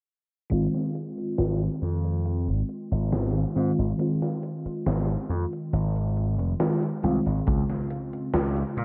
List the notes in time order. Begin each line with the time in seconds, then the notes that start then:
0.50 G#1 D#3 G#3 C4 F4, closed hi-hat
0.74 snare, closed hi-hat
0.95 closed hi-hat
1.18 closed hi-hat
1.38 G#1, snare, closed hi-hat
1.61 closed hi-hat
1.82 F2, closed hi-hat
2.05 closed hi-hat
2.25 closed hi-hat
2.48 G#1, closed hi-hat
2.69 closed hi-hat
2.91 G#1, closed hi-hat
3.12 D#3 G#3 C4 F4, snare, closed hi-hat
3.35 closed hi-hat
3.55 G#2 D#3 G#3 C4 F4, closed hi-hat
3.79 G#1, closed hi-hat
3.98 D#3 G#3 C4 F4, closed hi-hat
4.22 snare, closed hi-hat
4.43 closed hi-hat
4.65 muted slap bass stroke, closed hi-hat
4.86 G#1, snare, closed hi-hat
5.09 closed hi-hat
5.29 F2, closed hi-hat
5.53 closed hi-hat
5.73 G#1, closed hi-hat
5.96 closed hi-hat
6.17 closed hi-hat
6.39 F1, closed hi-hat
6.59 D#3 G#3 C4 F4, snare, closed hi-hat
6.83 closed hi-hat
7.03 C2 D#3 G#3 C4 F4, closed hi-hat
7.26 G#1, closed hi-hat
7.46 C#2 C#3 G#3 C4 F4, kick, closed hi-hat
7.69 snare, closed hi-hat
7.90 closed hi-hat
8.13 closed hi-hat
8.34 C#2, snare, closed hi-hat
8.57 closed hi-hat
8.77 A#2, closed hi-hat